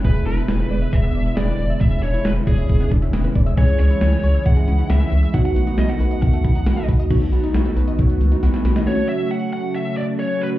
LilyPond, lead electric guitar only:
\new Staff \with { instrumentName = "Lead electric guitar" } { \time 4/4 \key e \mixolydian \tempo 4 = 136 b'8 b'4. e''4 d''4 | e''8 cis''8 b'8 gis'4 r4. | cis''8 cis''4. fis''4 e''4 | fis''16 fis''8. dis''16 fis''8. fis''4. r8 |
r1 | cis''8 e''8 fis''8 fis''8 e''8 d''8 cis''8 b'8 | }